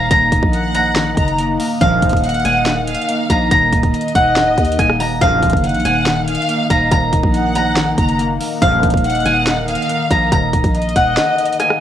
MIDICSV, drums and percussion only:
0, 0, Header, 1, 2, 480
1, 0, Start_track
1, 0, Key_signature, -6, "minor"
1, 0, Tempo, 425532
1, 121, Time_signature, 4, 2, 24, 8
1, 13314, End_track
2, 0, Start_track
2, 0, Title_t, "Drums"
2, 121, Note_on_c, 9, 36, 125
2, 121, Note_on_c, 9, 42, 86
2, 234, Note_off_c, 9, 36, 0
2, 234, Note_off_c, 9, 42, 0
2, 361, Note_on_c, 9, 36, 98
2, 362, Note_on_c, 9, 42, 86
2, 474, Note_off_c, 9, 36, 0
2, 474, Note_off_c, 9, 42, 0
2, 482, Note_on_c, 9, 36, 95
2, 594, Note_off_c, 9, 36, 0
2, 601, Note_on_c, 9, 42, 66
2, 714, Note_off_c, 9, 42, 0
2, 841, Note_on_c, 9, 42, 78
2, 954, Note_off_c, 9, 42, 0
2, 1081, Note_on_c, 9, 38, 123
2, 1081, Note_on_c, 9, 42, 73
2, 1194, Note_off_c, 9, 38, 0
2, 1194, Note_off_c, 9, 42, 0
2, 1321, Note_on_c, 9, 36, 101
2, 1321, Note_on_c, 9, 42, 83
2, 1434, Note_off_c, 9, 36, 0
2, 1434, Note_off_c, 9, 42, 0
2, 1442, Note_on_c, 9, 42, 49
2, 1555, Note_off_c, 9, 42, 0
2, 1561, Note_on_c, 9, 42, 86
2, 1674, Note_off_c, 9, 42, 0
2, 1802, Note_on_c, 9, 46, 97
2, 1914, Note_off_c, 9, 46, 0
2, 2041, Note_on_c, 9, 36, 124
2, 2041, Note_on_c, 9, 42, 86
2, 2154, Note_off_c, 9, 36, 0
2, 2154, Note_off_c, 9, 42, 0
2, 2281, Note_on_c, 9, 36, 96
2, 2281, Note_on_c, 9, 42, 85
2, 2361, Note_off_c, 9, 42, 0
2, 2361, Note_on_c, 9, 42, 70
2, 2394, Note_off_c, 9, 36, 0
2, 2402, Note_on_c, 9, 36, 91
2, 2442, Note_off_c, 9, 42, 0
2, 2442, Note_on_c, 9, 42, 51
2, 2515, Note_off_c, 9, 36, 0
2, 2522, Note_off_c, 9, 42, 0
2, 2522, Note_on_c, 9, 42, 68
2, 2582, Note_off_c, 9, 42, 0
2, 2582, Note_on_c, 9, 42, 60
2, 2643, Note_off_c, 9, 42, 0
2, 2643, Note_on_c, 9, 42, 51
2, 2702, Note_off_c, 9, 42, 0
2, 2702, Note_on_c, 9, 42, 40
2, 2762, Note_off_c, 9, 42, 0
2, 2762, Note_on_c, 9, 42, 82
2, 2875, Note_off_c, 9, 42, 0
2, 3001, Note_on_c, 9, 38, 117
2, 3002, Note_on_c, 9, 42, 72
2, 3114, Note_off_c, 9, 38, 0
2, 3115, Note_off_c, 9, 42, 0
2, 3242, Note_on_c, 9, 42, 83
2, 3322, Note_off_c, 9, 42, 0
2, 3322, Note_on_c, 9, 42, 66
2, 3402, Note_off_c, 9, 42, 0
2, 3402, Note_on_c, 9, 42, 50
2, 3481, Note_off_c, 9, 42, 0
2, 3481, Note_on_c, 9, 42, 85
2, 3594, Note_off_c, 9, 42, 0
2, 3721, Note_on_c, 9, 36, 93
2, 3722, Note_on_c, 9, 42, 96
2, 3834, Note_off_c, 9, 36, 0
2, 3835, Note_off_c, 9, 42, 0
2, 3962, Note_on_c, 9, 36, 119
2, 3962, Note_on_c, 9, 42, 86
2, 4075, Note_off_c, 9, 36, 0
2, 4075, Note_off_c, 9, 42, 0
2, 4202, Note_on_c, 9, 36, 98
2, 4202, Note_on_c, 9, 42, 86
2, 4314, Note_off_c, 9, 42, 0
2, 4315, Note_off_c, 9, 36, 0
2, 4322, Note_on_c, 9, 36, 94
2, 4322, Note_on_c, 9, 42, 51
2, 4435, Note_off_c, 9, 36, 0
2, 4435, Note_off_c, 9, 42, 0
2, 4443, Note_on_c, 9, 42, 58
2, 4522, Note_off_c, 9, 42, 0
2, 4522, Note_on_c, 9, 42, 56
2, 4602, Note_off_c, 9, 42, 0
2, 4602, Note_on_c, 9, 42, 56
2, 4682, Note_off_c, 9, 42, 0
2, 4682, Note_on_c, 9, 36, 90
2, 4682, Note_on_c, 9, 42, 80
2, 4795, Note_off_c, 9, 36, 0
2, 4795, Note_off_c, 9, 42, 0
2, 4921, Note_on_c, 9, 38, 120
2, 4922, Note_on_c, 9, 42, 72
2, 5034, Note_off_c, 9, 38, 0
2, 5034, Note_off_c, 9, 42, 0
2, 5162, Note_on_c, 9, 36, 100
2, 5162, Note_on_c, 9, 42, 71
2, 5242, Note_off_c, 9, 42, 0
2, 5242, Note_on_c, 9, 42, 67
2, 5274, Note_off_c, 9, 36, 0
2, 5322, Note_off_c, 9, 42, 0
2, 5322, Note_on_c, 9, 42, 67
2, 5402, Note_off_c, 9, 42, 0
2, 5402, Note_on_c, 9, 36, 96
2, 5402, Note_on_c, 9, 37, 69
2, 5402, Note_on_c, 9, 42, 83
2, 5515, Note_off_c, 9, 36, 0
2, 5515, Note_off_c, 9, 37, 0
2, 5515, Note_off_c, 9, 42, 0
2, 5522, Note_on_c, 9, 37, 100
2, 5635, Note_off_c, 9, 37, 0
2, 5642, Note_on_c, 9, 46, 98
2, 5755, Note_off_c, 9, 46, 0
2, 5882, Note_on_c, 9, 36, 121
2, 5882, Note_on_c, 9, 42, 83
2, 5995, Note_off_c, 9, 36, 0
2, 5995, Note_off_c, 9, 42, 0
2, 6122, Note_on_c, 9, 36, 95
2, 6122, Note_on_c, 9, 42, 84
2, 6202, Note_off_c, 9, 42, 0
2, 6202, Note_on_c, 9, 42, 68
2, 6235, Note_off_c, 9, 36, 0
2, 6242, Note_on_c, 9, 36, 95
2, 6281, Note_off_c, 9, 42, 0
2, 6281, Note_on_c, 9, 42, 49
2, 6355, Note_off_c, 9, 36, 0
2, 6361, Note_off_c, 9, 42, 0
2, 6361, Note_on_c, 9, 42, 69
2, 6421, Note_off_c, 9, 42, 0
2, 6421, Note_on_c, 9, 42, 59
2, 6481, Note_off_c, 9, 42, 0
2, 6481, Note_on_c, 9, 42, 50
2, 6541, Note_off_c, 9, 42, 0
2, 6541, Note_on_c, 9, 42, 41
2, 6601, Note_off_c, 9, 42, 0
2, 6601, Note_on_c, 9, 42, 81
2, 6714, Note_off_c, 9, 42, 0
2, 6841, Note_on_c, 9, 38, 115
2, 6841, Note_on_c, 9, 42, 72
2, 6953, Note_off_c, 9, 38, 0
2, 6954, Note_off_c, 9, 42, 0
2, 7080, Note_on_c, 9, 42, 86
2, 7161, Note_off_c, 9, 42, 0
2, 7161, Note_on_c, 9, 42, 64
2, 7241, Note_off_c, 9, 42, 0
2, 7241, Note_on_c, 9, 42, 49
2, 7320, Note_off_c, 9, 42, 0
2, 7320, Note_on_c, 9, 42, 83
2, 7433, Note_off_c, 9, 42, 0
2, 7560, Note_on_c, 9, 36, 94
2, 7560, Note_on_c, 9, 42, 99
2, 7673, Note_off_c, 9, 36, 0
2, 7673, Note_off_c, 9, 42, 0
2, 7800, Note_on_c, 9, 42, 87
2, 7801, Note_on_c, 9, 36, 120
2, 7913, Note_off_c, 9, 36, 0
2, 7913, Note_off_c, 9, 42, 0
2, 8040, Note_on_c, 9, 42, 88
2, 8041, Note_on_c, 9, 36, 98
2, 8153, Note_off_c, 9, 42, 0
2, 8154, Note_off_c, 9, 36, 0
2, 8161, Note_on_c, 9, 36, 96
2, 8274, Note_off_c, 9, 36, 0
2, 8281, Note_on_c, 9, 42, 66
2, 8394, Note_off_c, 9, 42, 0
2, 8521, Note_on_c, 9, 42, 77
2, 8633, Note_off_c, 9, 42, 0
2, 8760, Note_on_c, 9, 38, 121
2, 8761, Note_on_c, 9, 42, 75
2, 8873, Note_off_c, 9, 38, 0
2, 8874, Note_off_c, 9, 42, 0
2, 9000, Note_on_c, 9, 36, 101
2, 9000, Note_on_c, 9, 42, 84
2, 9113, Note_off_c, 9, 36, 0
2, 9113, Note_off_c, 9, 42, 0
2, 9120, Note_on_c, 9, 42, 51
2, 9233, Note_off_c, 9, 42, 0
2, 9241, Note_on_c, 9, 42, 83
2, 9354, Note_off_c, 9, 42, 0
2, 9481, Note_on_c, 9, 46, 95
2, 9594, Note_off_c, 9, 46, 0
2, 9721, Note_on_c, 9, 36, 125
2, 9721, Note_on_c, 9, 42, 85
2, 9833, Note_off_c, 9, 36, 0
2, 9834, Note_off_c, 9, 42, 0
2, 9961, Note_on_c, 9, 36, 98
2, 9961, Note_on_c, 9, 42, 90
2, 10041, Note_off_c, 9, 42, 0
2, 10041, Note_on_c, 9, 42, 68
2, 10074, Note_off_c, 9, 36, 0
2, 10081, Note_on_c, 9, 36, 98
2, 10121, Note_off_c, 9, 42, 0
2, 10121, Note_on_c, 9, 42, 52
2, 10194, Note_off_c, 9, 36, 0
2, 10201, Note_off_c, 9, 42, 0
2, 10201, Note_on_c, 9, 42, 70
2, 10262, Note_off_c, 9, 42, 0
2, 10262, Note_on_c, 9, 42, 60
2, 10321, Note_off_c, 9, 42, 0
2, 10321, Note_on_c, 9, 42, 49
2, 10381, Note_off_c, 9, 42, 0
2, 10381, Note_on_c, 9, 42, 40
2, 10441, Note_off_c, 9, 42, 0
2, 10441, Note_on_c, 9, 42, 81
2, 10554, Note_off_c, 9, 42, 0
2, 10681, Note_on_c, 9, 38, 124
2, 10681, Note_on_c, 9, 42, 74
2, 10794, Note_off_c, 9, 38, 0
2, 10794, Note_off_c, 9, 42, 0
2, 10921, Note_on_c, 9, 42, 80
2, 11001, Note_off_c, 9, 42, 0
2, 11001, Note_on_c, 9, 42, 67
2, 11081, Note_off_c, 9, 42, 0
2, 11081, Note_on_c, 9, 42, 51
2, 11161, Note_off_c, 9, 42, 0
2, 11161, Note_on_c, 9, 42, 82
2, 11274, Note_off_c, 9, 42, 0
2, 11400, Note_on_c, 9, 36, 92
2, 11401, Note_on_c, 9, 42, 95
2, 11513, Note_off_c, 9, 36, 0
2, 11514, Note_off_c, 9, 42, 0
2, 11641, Note_on_c, 9, 36, 122
2, 11641, Note_on_c, 9, 42, 87
2, 11754, Note_off_c, 9, 36, 0
2, 11754, Note_off_c, 9, 42, 0
2, 11881, Note_on_c, 9, 36, 94
2, 11882, Note_on_c, 9, 42, 87
2, 11994, Note_off_c, 9, 36, 0
2, 11995, Note_off_c, 9, 42, 0
2, 12001, Note_on_c, 9, 42, 49
2, 12002, Note_on_c, 9, 36, 93
2, 12114, Note_off_c, 9, 36, 0
2, 12114, Note_off_c, 9, 42, 0
2, 12121, Note_on_c, 9, 42, 56
2, 12202, Note_off_c, 9, 42, 0
2, 12202, Note_on_c, 9, 42, 56
2, 12281, Note_off_c, 9, 42, 0
2, 12281, Note_on_c, 9, 42, 59
2, 12361, Note_off_c, 9, 42, 0
2, 12361, Note_on_c, 9, 36, 91
2, 12361, Note_on_c, 9, 42, 81
2, 12474, Note_off_c, 9, 36, 0
2, 12474, Note_off_c, 9, 42, 0
2, 12600, Note_on_c, 9, 38, 116
2, 12601, Note_on_c, 9, 42, 70
2, 12713, Note_off_c, 9, 38, 0
2, 12714, Note_off_c, 9, 42, 0
2, 12841, Note_on_c, 9, 42, 66
2, 12921, Note_off_c, 9, 42, 0
2, 12921, Note_on_c, 9, 42, 69
2, 13001, Note_off_c, 9, 42, 0
2, 13001, Note_on_c, 9, 42, 71
2, 13081, Note_off_c, 9, 42, 0
2, 13081, Note_on_c, 9, 37, 68
2, 13081, Note_on_c, 9, 42, 84
2, 13194, Note_off_c, 9, 37, 0
2, 13194, Note_off_c, 9, 42, 0
2, 13201, Note_on_c, 9, 37, 101
2, 13314, Note_off_c, 9, 37, 0
2, 13314, End_track
0, 0, End_of_file